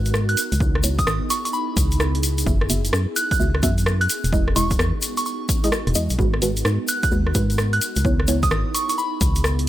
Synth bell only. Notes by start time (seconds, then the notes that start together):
0.29 F#6
0.99 D#6
1.30 C#6
1.45 C#6
1.53 B5
3.16 F#6
3.31 F#6
4.01 F#6
4.56 C#6
5.17 C#6
5.26 C#6
6.89 F#6
7.03 F#6
7.73 F#6
8.43 D#6
8.75 C#6
8.89 C#6
8.98 B5